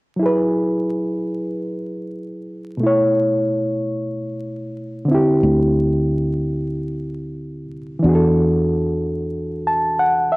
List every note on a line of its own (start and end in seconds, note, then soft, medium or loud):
0.16 2.75 F#3 soft
0.16 2.76 E4 soft
0.23 2.78 G#4 soft
0.23 2.79 B4 medium
2.77 5.03 B2 medium
2.77 5.04 A3 soft
2.83 5.06 E4 soft
2.83 5.08 C#5 medium
5.05 7.64 D3 medium
5.05 7.65 C4 medium
5.11 7.67 E4 medium
5.11 7.68 G4 medium
5.43 7.99 D2 medium
7.99 10.37 E3 medium
7.99 10.37 D4 soft
8.04 10.37 E2 medium
8.04 10.37 F#4 soft
8.09 8.13 G#4 soft
8.15 10.37 A4 medium
9.67 9.96 A5 medium
9.99 10.29 F#5 medium
10.32 10.37 E5 medium